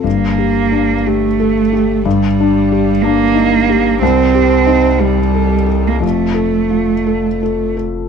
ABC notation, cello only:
X:1
M:6/8
L:1/16
Q:3/8=60
K:Gm
V:1 name="Cello"
B,6 A,6 | G,6 B,6 | C6 G,4- G, B, | A,8- A,2 z2 |]